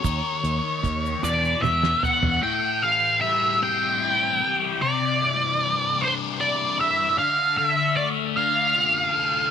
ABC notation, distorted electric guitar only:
X:1
M:6/8
L:1/8
Q:3/8=51
K:Ephr
V:1 name="Distorted electric guitar" clef=bass
[^D,^A,^D]3 [E,,B,,E,]3 | [K:Am] A,, E, G, C E G, | C, E, G, D E G, | D, D, A, D F A, |]